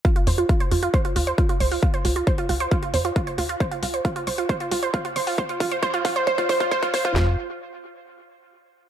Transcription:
<<
  \new Staff \with { instrumentName = "Synth arpeggio sound" } { \time 4/4 \key bes \dorian \tempo 4 = 135 f'16 f'16 c''16 f'16 f'16 c''16 f'16 f'16 c''16 f'16 f'16 c''16 f'16 f'16 c''16 f'16 | f'16 c''16 f'16 f'16 c''16 f'16 f'16 c''16 f'16 f'16 c''16 f'16 f'16 c''16 f'16 f'16 | c''16 f'16 f'16 c''16 f'16 f'16 c''16 f'16 c''16 f'16 f'16 c''16 f'16 f'16 c''16 f'16 | c''16 f'16 f'16 c''16 c''16 f'16 f'16 c''16 c''16 f'16 c''16 f'16 c''16 f'16 c''16 f'16 |
f'8 r2. r8 | }
  \new Staff \with { instrumentName = "Analog synth bass" } { \clef bass \time 4/4 \key bes \dorian r8 f,8 r8 f,8 r8 ees,8 r8 des,8 | r8 des,8 r8 des,8 r8 f,8 r8 ees,8 | r8 des,8 r8 des,8 r8 des,8 r8 aes,,8 | r8 bes,,8 r8 bes,,8 r8 bes,,8 r8 aes,,8 |
f,8 r2. r8 | }
  \new DrumStaff \with { instrumentName = "Drums" } \drummode { \time 4/4 <hh bd>16 hh16 hho16 hh16 <hh bd>16 hh16 hho16 hh16 <hh bd>16 hh16 hho16 hh16 <hh bd>16 hh16 hho16 hho16 | bd16 hh16 hho16 hh16 <hh bd>16 hh16 hho16 hh16 <hh bd>16 hh16 hho16 hh16 <hh bd>16 hh16 hho16 hh16 | <hh bd>16 hh16 hho16 hh16 <hh bd>16 hh16 hho16 hh16 <hh bd>16 hh16 hho16 hh16 <hh bd>16 hh16 hho16 hho16 | bd16 hh16 <hho bd>16 hh16 <hh bd>16 hh16 <hho bd>16 hh16 <hh bd>16 <hh bd>16 <hho bd>16 <hh bd>16 <hh bd>16 <hh bd>16 <hho bd>16 <hh bd>16 |
<hc sn>4 r4 r4 r4 | }
>>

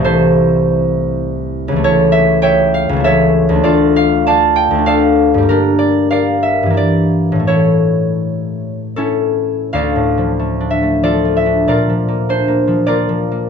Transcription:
<<
  \new Staff \with { instrumentName = "Harp" } { \time 3/4 \key a \minor \tempo 4 = 97 << { <c'' d'' e''>2. | \key d \minor cis''8 e''8 g''8 f''8 e''4 | d''8 f''8 a''8 g''8 f''4 | bes'8 d''8 f''8 e''8 d''4 |
cis''2 a'4 | f''4. e''8 d''8 e''8 | d''4 c''4 d''4 | } \\ { <e' a'>2. | <e' a'>4 <cis'' e''>4 <a' cis''>4 | <f' a'>4 <d'' f''>4 <a' d''>4 | <d' g'>4 <bes' d''>2 |
<e' a'>2 <cis' e'>4 | <a' d''>2 <f' a'>4 | <f' bes'>2 <f' bes'>4 | } >> }
  \new Staff \with { instrumentName = "Harp" } { \clef bass \time 3/4 \key a \minor << { r2. | \key d \minor r2. | r2. | r2. |
r2. | \tuplet 3/2 { d,8 a,8 f8 a8 d'8 a8 f8 a8 d'8 } | \tuplet 3/2 { bes,8 f8 bes8 d'8 bes8 f8 bes8 f8 bes8 } | } \\ { <c, e a>2. | <cis, e a>2 <cis, e a e'>4 | <d, a d'>2 <d, a d'>4 | <g, g bes>2 <g, e bes e'>4 |
<a, e a>2.~ | <a, e a>2. | r2. | } >> }
>>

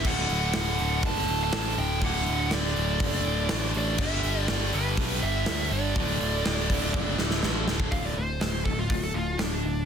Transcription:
<<
  \new Staff \with { instrumentName = "Lead electric guitar" } { \time 4/4 \key g \major \tempo 4 = 122 fis''4 fis''4 a''8. a''8. g''8 | fis''4 d''2~ d''8 d''8 | e''4 d''8 b'4 e''4 d''8~ | d''2.~ d''8 r8 |
f''16 d''16 c''4 a'16 f'8 a'16 f'8 d'4 | }
  \new Staff \with { instrumentName = "Distorted electric guitar" } { \clef bass \time 4/4 \key g \major <d, a, d>4. <d, a, d>2~ <d, a, d>8 | <d, a, d>4. <d, a, d>2~ <d, a, d>8 | <g, d g>4. <g, d g>2~ <g, d g>8 | <d, a, d>4. <d, a, d>2~ <d, a, d>8 |
<d, a, d>8 <d, a,>8 <d, a,>8 <d, a,>8 <d, a,>8 <d, a,>8 <d, a,>8 <d, a,>8 | }
  \new Staff \with { instrumentName = "Distorted electric guitar" } { \clef bass \time 4/4 \key g \major <d, a, d>1 | <d, a, d>1 | <d g>1 | <d, a, d>1 |
r1 | }
  \new Staff \with { instrumentName = "Overdriven electric guitar" } { \clef bass \time 4/4 \key g \major <d, a, d>1 | <d, a, d>1 | <g, d g>1 | <d, a, d>1 |
<d, a, d>8 <d, a,>8 <d, a,>8 <d, a,>8 <d, a,>8 <d, a,>8 <d, a,>8 <d, a,>8 | }
  \new Staff \with { instrumentName = "Picked electric bass" } { \clef bass \time 4/4 \key g \major d,,8 d,,8 d,,8 d,,8 fis,,8 d,,8 a,,8 d,,8 | d,,8 d,,8 d,,8 d,,8 fis,,8 d,,8 a,,8 a,,8 | g,,8 g,,8 g,,8 g,,8 b,,8 g,,8 d,8 g,,8 | d,,8 d,,8 d,,8 d,,8 fis,,8 d,,8 a,,8 d,,8 |
d,,8 d,,8 d,,8 d,,8 d,,8 d,,8 d,,8 d,,8 | }
  \new DrumStaff \with { instrumentName = "Drums" } \drummode { \time 4/4 <cymc bd>8 hho8 sn8 hho8 <hho bd>8 hho8 sn8 hho8 | <hho bd>8 hho8 sn8 hho8 <hho bd>8 hho8 <hho sn>8 hho8 | <cymc bd>8 hho8 <hho sn>8 hho8 <hho bd>8 hho8 <hho sn>8 hho8 | bd8 hho8 sn8 <hho bd>8 bd8 sn16 sn16 sn8 sn16 bd16 |
<hho bd>4 <hho sn>8 bd8 <hho bd>4 <hho sn>4 | }
>>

